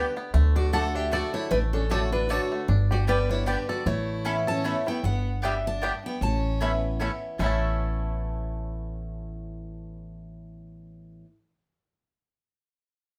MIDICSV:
0, 0, Header, 1, 7, 480
1, 0, Start_track
1, 0, Tempo, 392157
1, 414, Time_signature, 3, 2, 24, 8
1, 16142, End_track
2, 0, Start_track
2, 0, Title_t, "Steel-string acoustic guitar"
2, 0, Program_c, 0, 25
2, 0, Note_on_c, 0, 71, 79
2, 157, Note_off_c, 0, 71, 0
2, 686, Note_on_c, 0, 74, 98
2, 881, Note_off_c, 0, 74, 0
2, 897, Note_on_c, 0, 78, 105
2, 1168, Note_off_c, 0, 78, 0
2, 1168, Note_on_c, 0, 76, 88
2, 1377, Note_off_c, 0, 76, 0
2, 1382, Note_on_c, 0, 74, 99
2, 1625, Note_off_c, 0, 74, 0
2, 1637, Note_on_c, 0, 73, 91
2, 1836, Note_off_c, 0, 73, 0
2, 1844, Note_on_c, 0, 71, 101
2, 1917, Note_off_c, 0, 71, 0
2, 2119, Note_on_c, 0, 69, 87
2, 2338, Note_off_c, 0, 69, 0
2, 2343, Note_on_c, 0, 73, 103
2, 2586, Note_off_c, 0, 73, 0
2, 2600, Note_on_c, 0, 71, 88
2, 2816, Note_off_c, 0, 71, 0
2, 2816, Note_on_c, 0, 73, 94
2, 3186, Note_off_c, 0, 73, 0
2, 3573, Note_on_c, 0, 74, 99
2, 3635, Note_off_c, 0, 74, 0
2, 3781, Note_on_c, 0, 71, 92
2, 4042, Note_off_c, 0, 71, 0
2, 4047, Note_on_c, 0, 73, 93
2, 4251, Note_off_c, 0, 73, 0
2, 4251, Note_on_c, 0, 71, 80
2, 4515, Note_off_c, 0, 71, 0
2, 4520, Note_on_c, 0, 74, 86
2, 4732, Note_on_c, 0, 73, 86
2, 4737, Note_off_c, 0, 74, 0
2, 5485, Note_on_c, 0, 81, 104
2, 5908, Note_off_c, 0, 73, 0
2, 5968, Note_off_c, 0, 81, 0
2, 5973, Note_on_c, 0, 79, 96
2, 6177, Note_off_c, 0, 79, 0
2, 6182, Note_on_c, 0, 78, 88
2, 6669, Note_off_c, 0, 78, 0
2, 6670, Note_on_c, 0, 76, 93
2, 6908, Note_off_c, 0, 76, 0
2, 6942, Note_on_c, 0, 81, 104
2, 7413, Note_off_c, 0, 81, 0
2, 7417, Note_on_c, 0, 79, 85
2, 7622, Note_off_c, 0, 79, 0
2, 7627, Note_on_c, 0, 81, 99
2, 8529, Note_off_c, 0, 81, 0
2, 16142, End_track
3, 0, Start_track
3, 0, Title_t, "Mandolin"
3, 0, Program_c, 1, 25
3, 892, Note_on_c, 1, 57, 84
3, 896, Note_on_c, 1, 66, 87
3, 902, Note_on_c, 1, 74, 86
3, 904, Note_on_c, 1, 81, 102
3, 1015, Note_off_c, 1, 57, 0
3, 1017, Note_off_c, 1, 66, 0
3, 1020, Note_off_c, 1, 74, 0
3, 1021, Note_off_c, 1, 81, 0
3, 1365, Note_on_c, 1, 57, 90
3, 1373, Note_on_c, 1, 66, 85
3, 1381, Note_on_c, 1, 74, 80
3, 1383, Note_on_c, 1, 81, 83
3, 1491, Note_off_c, 1, 57, 0
3, 1495, Note_off_c, 1, 66, 0
3, 1499, Note_off_c, 1, 74, 0
3, 1500, Note_off_c, 1, 81, 0
3, 2329, Note_on_c, 1, 57, 89
3, 2336, Note_on_c, 1, 66, 94
3, 2339, Note_on_c, 1, 74, 106
3, 2343, Note_on_c, 1, 81, 102
3, 2452, Note_off_c, 1, 57, 0
3, 2456, Note_off_c, 1, 66, 0
3, 2458, Note_off_c, 1, 74, 0
3, 2460, Note_off_c, 1, 81, 0
3, 2808, Note_on_c, 1, 57, 74
3, 2815, Note_on_c, 1, 66, 89
3, 2819, Note_on_c, 1, 74, 94
3, 2824, Note_on_c, 1, 81, 101
3, 2932, Note_off_c, 1, 57, 0
3, 2935, Note_off_c, 1, 66, 0
3, 2937, Note_off_c, 1, 74, 0
3, 2940, Note_off_c, 1, 81, 0
3, 3764, Note_on_c, 1, 59, 93
3, 3770, Note_on_c, 1, 67, 92
3, 3774, Note_on_c, 1, 74, 108
3, 3781, Note_on_c, 1, 79, 97
3, 3889, Note_off_c, 1, 59, 0
3, 3892, Note_off_c, 1, 67, 0
3, 3894, Note_off_c, 1, 74, 0
3, 3897, Note_off_c, 1, 79, 0
3, 4236, Note_on_c, 1, 59, 78
3, 4243, Note_on_c, 1, 67, 98
3, 4247, Note_on_c, 1, 74, 93
3, 4255, Note_on_c, 1, 79, 94
3, 4365, Note_off_c, 1, 59, 0
3, 4369, Note_off_c, 1, 67, 0
3, 4371, Note_off_c, 1, 74, 0
3, 4374, Note_off_c, 1, 79, 0
3, 5200, Note_on_c, 1, 61, 96
3, 5206, Note_on_c, 1, 69, 98
3, 5209, Note_on_c, 1, 76, 90
3, 5215, Note_on_c, 1, 83, 104
3, 5327, Note_off_c, 1, 61, 0
3, 5330, Note_off_c, 1, 69, 0
3, 5331, Note_off_c, 1, 76, 0
3, 5334, Note_off_c, 1, 83, 0
3, 5682, Note_on_c, 1, 61, 88
3, 5690, Note_on_c, 1, 69, 84
3, 5693, Note_on_c, 1, 76, 90
3, 5699, Note_on_c, 1, 83, 86
3, 5808, Note_off_c, 1, 61, 0
3, 5812, Note_off_c, 1, 69, 0
3, 5813, Note_off_c, 1, 76, 0
3, 5816, Note_off_c, 1, 83, 0
3, 6634, Note_on_c, 1, 59, 90
3, 6643, Note_on_c, 1, 67, 87
3, 6645, Note_on_c, 1, 74, 93
3, 6651, Note_on_c, 1, 79, 97
3, 6763, Note_off_c, 1, 59, 0
3, 6768, Note_off_c, 1, 67, 0
3, 6769, Note_off_c, 1, 74, 0
3, 6772, Note_off_c, 1, 79, 0
3, 7118, Note_on_c, 1, 59, 89
3, 7122, Note_on_c, 1, 67, 78
3, 7128, Note_on_c, 1, 74, 80
3, 7132, Note_on_c, 1, 79, 106
3, 7246, Note_off_c, 1, 59, 0
3, 7248, Note_off_c, 1, 67, 0
3, 7251, Note_off_c, 1, 74, 0
3, 7253, Note_off_c, 1, 79, 0
3, 8083, Note_on_c, 1, 61, 82
3, 8090, Note_on_c, 1, 69, 86
3, 8096, Note_on_c, 1, 76, 94
3, 8099, Note_on_c, 1, 83, 95
3, 8209, Note_off_c, 1, 61, 0
3, 8212, Note_off_c, 1, 69, 0
3, 8215, Note_off_c, 1, 76, 0
3, 8216, Note_off_c, 1, 83, 0
3, 8561, Note_on_c, 1, 61, 82
3, 8568, Note_on_c, 1, 69, 77
3, 8572, Note_on_c, 1, 76, 81
3, 8578, Note_on_c, 1, 83, 91
3, 8688, Note_off_c, 1, 61, 0
3, 8691, Note_off_c, 1, 69, 0
3, 8693, Note_off_c, 1, 76, 0
3, 8696, Note_off_c, 1, 83, 0
3, 9037, Note_on_c, 1, 61, 67
3, 9052, Note_on_c, 1, 69, 79
3, 9062, Note_on_c, 1, 76, 86
3, 9078, Note_on_c, 1, 83, 84
3, 13762, Note_off_c, 1, 61, 0
3, 13770, Note_off_c, 1, 69, 0
3, 13775, Note_off_c, 1, 76, 0
3, 13783, Note_off_c, 1, 83, 0
3, 16142, End_track
4, 0, Start_track
4, 0, Title_t, "Fiddle"
4, 0, Program_c, 2, 110
4, 0, Note_on_c, 2, 62, 70
4, 154, Note_off_c, 2, 62, 0
4, 681, Note_on_c, 2, 66, 75
4, 879, Note_off_c, 2, 66, 0
4, 901, Note_on_c, 2, 69, 89
4, 1172, Note_on_c, 2, 67, 84
4, 1191, Note_off_c, 2, 69, 0
4, 1366, Note_off_c, 2, 67, 0
4, 1374, Note_on_c, 2, 66, 91
4, 1621, Note_off_c, 2, 66, 0
4, 1644, Note_on_c, 2, 64, 85
4, 1839, Note_off_c, 2, 64, 0
4, 1863, Note_on_c, 2, 62, 84
4, 1980, Note_off_c, 2, 62, 0
4, 2125, Note_on_c, 2, 61, 77
4, 2320, Note_off_c, 2, 61, 0
4, 2336, Note_on_c, 2, 66, 84
4, 2582, Note_off_c, 2, 66, 0
4, 2610, Note_on_c, 2, 62, 75
4, 2812, Note_on_c, 2, 66, 83
4, 2831, Note_off_c, 2, 62, 0
4, 3184, Note_off_c, 2, 66, 0
4, 3570, Note_on_c, 2, 66, 82
4, 3762, Note_on_c, 2, 62, 79
4, 3780, Note_off_c, 2, 66, 0
4, 4032, Note_off_c, 2, 62, 0
4, 4040, Note_on_c, 2, 64, 78
4, 4252, Note_on_c, 2, 62, 76
4, 4270, Note_off_c, 2, 64, 0
4, 4510, Note_off_c, 2, 62, 0
4, 4517, Note_on_c, 2, 66, 79
4, 4715, Note_off_c, 2, 66, 0
4, 4737, Note_on_c, 2, 64, 76
4, 5430, Note_off_c, 2, 64, 0
4, 5477, Note_on_c, 2, 61, 91
4, 5923, Note_off_c, 2, 61, 0
4, 5970, Note_on_c, 2, 59, 82
4, 6161, Note_off_c, 2, 59, 0
4, 6171, Note_on_c, 2, 59, 82
4, 6616, Note_off_c, 2, 59, 0
4, 6656, Note_on_c, 2, 55, 73
4, 6900, Note_off_c, 2, 55, 0
4, 6928, Note_on_c, 2, 62, 85
4, 7368, Note_off_c, 2, 62, 0
4, 7415, Note_on_c, 2, 59, 78
4, 7604, Note_off_c, 2, 59, 0
4, 7630, Note_on_c, 2, 61, 85
4, 8531, Note_off_c, 2, 61, 0
4, 16142, End_track
5, 0, Start_track
5, 0, Title_t, "Five-string banjo"
5, 0, Program_c, 3, 105
5, 0, Note_on_c, 3, 59, 72
5, 0, Note_on_c, 3, 62, 56
5, 0, Note_on_c, 3, 67, 66
5, 192, Note_off_c, 3, 59, 0
5, 206, Note_on_c, 3, 59, 67
5, 409, Note_off_c, 3, 59, 0
5, 413, Note_off_c, 3, 67, 0
5, 414, Note_on_c, 3, 57, 77
5, 676, Note_off_c, 3, 62, 0
5, 681, Note_on_c, 3, 62, 51
5, 899, Note_on_c, 3, 69, 62
5, 1106, Note_off_c, 3, 57, 0
5, 1160, Note_off_c, 3, 62, 0
5, 1165, Note_on_c, 3, 62, 61
5, 1371, Note_off_c, 3, 69, 0
5, 1385, Note_on_c, 3, 69, 72
5, 1650, Note_on_c, 3, 57, 61
5, 1840, Note_off_c, 3, 57, 0
5, 1855, Note_on_c, 3, 57, 79
5, 2071, Note_off_c, 3, 69, 0
5, 2124, Note_off_c, 3, 62, 0
5, 2129, Note_on_c, 3, 62, 54
5, 2339, Note_on_c, 3, 69, 63
5, 2546, Note_off_c, 3, 57, 0
5, 2590, Note_off_c, 3, 62, 0
5, 2605, Note_on_c, 3, 62, 62
5, 2804, Note_off_c, 3, 69, 0
5, 2819, Note_on_c, 3, 69, 68
5, 3082, Note_on_c, 3, 57, 64
5, 3251, Note_off_c, 3, 62, 0
5, 3290, Note_on_c, 3, 62, 70
5, 3292, Note_off_c, 3, 57, 0
5, 3294, Note_off_c, 3, 69, 0
5, 3559, Note_on_c, 3, 67, 62
5, 3772, Note_on_c, 3, 55, 63
5, 3983, Note_off_c, 3, 62, 0
5, 4033, Note_on_c, 3, 62, 62
5, 4208, Note_off_c, 3, 67, 0
5, 4252, Note_on_c, 3, 67, 67
5, 4464, Note_off_c, 3, 55, 0
5, 4516, Note_on_c, 3, 69, 64
5, 4685, Note_off_c, 3, 62, 0
5, 4729, Note_off_c, 3, 69, 0
5, 4730, Note_off_c, 3, 67, 0
5, 4731, Note_on_c, 3, 57, 73
5, 5207, Note_on_c, 3, 61, 66
5, 5423, Note_off_c, 3, 57, 0
5, 5474, Note_on_c, 3, 69, 65
5, 5693, Note_on_c, 3, 57, 68
5, 5901, Note_off_c, 3, 61, 0
5, 5960, Note_on_c, 3, 64, 61
5, 6125, Note_off_c, 3, 69, 0
5, 6171, Note_off_c, 3, 57, 0
5, 6171, Note_off_c, 3, 64, 0
5, 6658, Note_on_c, 3, 59, 68
5, 6666, Note_on_c, 3, 67, 63
5, 6667, Note_on_c, 3, 62, 67
5, 6771, Note_off_c, 3, 59, 0
5, 6773, Note_off_c, 3, 62, 0
5, 6775, Note_off_c, 3, 67, 0
5, 7139, Note_on_c, 3, 59, 70
5, 7142, Note_on_c, 3, 62, 69
5, 7150, Note_on_c, 3, 67, 65
5, 7251, Note_off_c, 3, 59, 0
5, 7254, Note_off_c, 3, 62, 0
5, 7255, Note_off_c, 3, 67, 0
5, 8105, Note_on_c, 3, 57, 70
5, 8113, Note_on_c, 3, 61, 64
5, 8113, Note_on_c, 3, 64, 65
5, 8215, Note_off_c, 3, 57, 0
5, 8217, Note_off_c, 3, 61, 0
5, 8218, Note_off_c, 3, 64, 0
5, 8585, Note_on_c, 3, 57, 66
5, 8593, Note_on_c, 3, 61, 68
5, 8594, Note_on_c, 3, 64, 63
5, 8696, Note_off_c, 3, 57, 0
5, 8697, Note_off_c, 3, 61, 0
5, 8699, Note_off_c, 3, 64, 0
5, 9056, Note_on_c, 3, 57, 80
5, 9081, Note_on_c, 3, 61, 81
5, 9104, Note_on_c, 3, 64, 83
5, 9133, Note_on_c, 3, 69, 84
5, 13723, Note_off_c, 3, 57, 0
5, 13736, Note_off_c, 3, 61, 0
5, 13747, Note_off_c, 3, 64, 0
5, 13761, Note_off_c, 3, 69, 0
5, 16142, End_track
6, 0, Start_track
6, 0, Title_t, "Steel-string acoustic guitar"
6, 0, Program_c, 4, 25
6, 0, Note_on_c, 4, 50, 84
6, 0, Note_on_c, 4, 55, 77
6, 0, Note_on_c, 4, 59, 87
6, 0, Note_on_c, 4, 67, 88
6, 185, Note_off_c, 4, 67, 0
6, 189, Note_off_c, 4, 50, 0
6, 193, Note_off_c, 4, 55, 0
6, 196, Note_off_c, 4, 59, 0
6, 200, Note_on_c, 4, 67, 52
6, 218, Note_on_c, 4, 59, 50
6, 405, Note_off_c, 4, 67, 0
6, 414, Note_off_c, 4, 59, 0
6, 415, Note_on_c, 4, 50, 97
6, 875, Note_off_c, 4, 50, 0
6, 890, Note_on_c, 4, 50, 85
6, 897, Note_on_c, 4, 57, 87
6, 905, Note_on_c, 4, 62, 105
6, 909, Note_on_c, 4, 66, 92
6, 1349, Note_off_c, 4, 50, 0
6, 1353, Note_off_c, 4, 57, 0
6, 1357, Note_off_c, 4, 62, 0
6, 1359, Note_off_c, 4, 66, 0
6, 1365, Note_on_c, 4, 50, 87
6, 1373, Note_on_c, 4, 57, 90
6, 1379, Note_on_c, 4, 62, 99
6, 1386, Note_on_c, 4, 66, 90
6, 1827, Note_off_c, 4, 50, 0
6, 1831, Note_off_c, 4, 57, 0
6, 1834, Note_off_c, 4, 62, 0
6, 1837, Note_off_c, 4, 66, 0
6, 1850, Note_on_c, 4, 45, 91
6, 2321, Note_on_c, 4, 50, 92
6, 2329, Note_on_c, 4, 57, 84
6, 2336, Note_on_c, 4, 62, 83
6, 2341, Note_on_c, 4, 66, 99
6, 2767, Note_off_c, 4, 45, 0
6, 2784, Note_off_c, 4, 50, 0
6, 2788, Note_off_c, 4, 57, 0
6, 2792, Note_off_c, 4, 62, 0
6, 2794, Note_off_c, 4, 66, 0
6, 2803, Note_on_c, 4, 50, 95
6, 2811, Note_on_c, 4, 57, 86
6, 2816, Note_on_c, 4, 62, 97
6, 2824, Note_on_c, 4, 66, 107
6, 3265, Note_off_c, 4, 50, 0
6, 3269, Note_off_c, 4, 57, 0
6, 3272, Note_off_c, 4, 62, 0
6, 3275, Note_off_c, 4, 66, 0
6, 3284, Note_on_c, 4, 43, 88
6, 3762, Note_on_c, 4, 50, 83
6, 3771, Note_on_c, 4, 55, 90
6, 3777, Note_on_c, 4, 59, 104
6, 3783, Note_on_c, 4, 67, 89
6, 4203, Note_off_c, 4, 43, 0
6, 4224, Note_off_c, 4, 50, 0
6, 4229, Note_off_c, 4, 55, 0
6, 4231, Note_off_c, 4, 59, 0
6, 4234, Note_off_c, 4, 67, 0
6, 4237, Note_on_c, 4, 50, 86
6, 4245, Note_on_c, 4, 55, 93
6, 4253, Note_on_c, 4, 59, 92
6, 4259, Note_on_c, 4, 67, 95
6, 4702, Note_off_c, 4, 50, 0
6, 4705, Note_off_c, 4, 55, 0
6, 4709, Note_off_c, 4, 59, 0
6, 4712, Note_off_c, 4, 67, 0
6, 4730, Note_on_c, 4, 45, 91
6, 5197, Note_on_c, 4, 52, 98
6, 5205, Note_on_c, 4, 59, 101
6, 5215, Note_on_c, 4, 61, 104
6, 5220, Note_on_c, 4, 64, 102
6, 5646, Note_off_c, 4, 45, 0
6, 5661, Note_off_c, 4, 52, 0
6, 5665, Note_off_c, 4, 59, 0
6, 5670, Note_off_c, 4, 61, 0
6, 5673, Note_off_c, 4, 64, 0
6, 5682, Note_on_c, 4, 52, 84
6, 5690, Note_on_c, 4, 59, 96
6, 5698, Note_on_c, 4, 61, 103
6, 5702, Note_on_c, 4, 64, 95
6, 5936, Note_off_c, 4, 64, 0
6, 5941, Note_off_c, 4, 52, 0
6, 5946, Note_off_c, 4, 59, 0
6, 5949, Note_off_c, 4, 61, 0
6, 5950, Note_on_c, 4, 64, 60
6, 5969, Note_on_c, 4, 61, 45
6, 6157, Note_off_c, 4, 64, 0
6, 6167, Note_off_c, 4, 61, 0
6, 6171, Note_on_c, 4, 43, 95
6, 6648, Note_off_c, 4, 43, 0
6, 6652, Note_on_c, 4, 42, 88
6, 7109, Note_off_c, 4, 42, 0
6, 7135, Note_on_c, 4, 43, 88
6, 7591, Note_off_c, 4, 43, 0
6, 7615, Note_on_c, 4, 45, 91
6, 8087, Note_on_c, 4, 52, 95
6, 8096, Note_on_c, 4, 59, 94
6, 8101, Note_on_c, 4, 61, 96
6, 8105, Note_on_c, 4, 64, 93
6, 8530, Note_off_c, 4, 45, 0
6, 8547, Note_off_c, 4, 52, 0
6, 8551, Note_off_c, 4, 59, 0
6, 8554, Note_off_c, 4, 61, 0
6, 8556, Note_off_c, 4, 64, 0
6, 8567, Note_on_c, 4, 52, 76
6, 8576, Note_on_c, 4, 59, 84
6, 8581, Note_on_c, 4, 61, 97
6, 8587, Note_on_c, 4, 64, 90
6, 9027, Note_off_c, 4, 52, 0
6, 9032, Note_off_c, 4, 59, 0
6, 9034, Note_off_c, 4, 61, 0
6, 9037, Note_off_c, 4, 64, 0
6, 9047, Note_on_c, 4, 45, 85
6, 9056, Note_on_c, 4, 52, 84
6, 9061, Note_on_c, 4, 59, 87
6, 9069, Note_on_c, 4, 61, 85
6, 9079, Note_on_c, 4, 64, 92
6, 13768, Note_off_c, 4, 45, 0
6, 13772, Note_off_c, 4, 52, 0
6, 13775, Note_off_c, 4, 59, 0
6, 13779, Note_off_c, 4, 61, 0
6, 13783, Note_off_c, 4, 64, 0
6, 16142, End_track
7, 0, Start_track
7, 0, Title_t, "Upright bass"
7, 0, Program_c, 5, 32
7, 414, Note_on_c, 5, 38, 99
7, 1468, Note_off_c, 5, 38, 0
7, 1852, Note_on_c, 5, 33, 90
7, 2906, Note_off_c, 5, 33, 0
7, 3288, Note_on_c, 5, 31, 101
7, 4343, Note_off_c, 5, 31, 0
7, 4725, Note_on_c, 5, 33, 100
7, 5781, Note_off_c, 5, 33, 0
7, 6163, Note_on_c, 5, 31, 93
7, 7220, Note_off_c, 5, 31, 0
7, 7603, Note_on_c, 5, 33, 95
7, 8661, Note_off_c, 5, 33, 0
7, 9049, Note_on_c, 5, 33, 101
7, 13720, Note_off_c, 5, 33, 0
7, 16142, End_track
0, 0, End_of_file